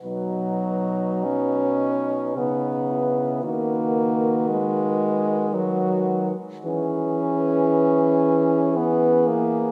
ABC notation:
X:1
M:3/4
L:1/16
Q:1/4=57
K:B
V:1 name="French horn"
B8 B4 | B8 B3 z | B8 B4 |]
V:2 name="French horn"
D8 D2 E2 | F8 F3 z | G8 G4 |]
V:3 name="French horn"
F,4 C4 B,4 | A,4 G,4 F,3 z | C8 B,2 A,2 |]
V:4 name="French horn" clef=bass
B,,8 C,4 | D,8- D,3 z | E,12 |]